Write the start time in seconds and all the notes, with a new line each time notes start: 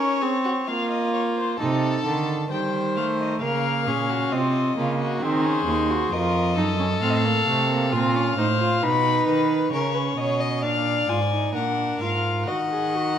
Already playing: C#4 A#4 C#5
0.21 C4 G#4
0.44 F#4
0.68 A#3 F4 F5
0.90 D#5
1.13 C#5
1.37 C5
1.59 C3 D#4 A4 A5
2.05 D3 D#3
2.51 D#3 G3 C5 G5
2.96 A3 F5
3.19 D#5
3.42 C#3 A#3 A#4 F5
3.87 A#2 C#4 G#4
4.10 F#4
4.32 C3 C4 F4 D#5
4.77 C#3 A#3 F4
5.00 F#4
5.22 D#3 C4 G#4 C5
5.44 C#4
5.66 D#2 D#4
5.90 F#4
6.12 F2 F4 A#4 D#5
6.56 F#2 D#4 A4
6.79 C#4
7.01 A2 C4 F5
7.09 D#5
7.16 F5
7.25 A#3
7.47 C3 A3
7.70 A#3
7.92 A#2 C4 F4 F5
8.15 C#4
8.38 A2 D#4 C5
8.60 F4
8.83 B2 D#4 B4 B5
9.27 D#3 B4
9.72 C#3 C#4 A#4 C#5
9.95 B4
10.17 B2 C#5 D#5
10.40 D#5
10.62 A#2 D4 D5 F5
11.08 G#2 F4 G#5
11.31 D#4
11.54 A#2 D4 A#4 F#5
12.00 G#2 F4 F5
12.47 D#3 F#4 D#5 F#5
12.71 G#4
12.95 F#4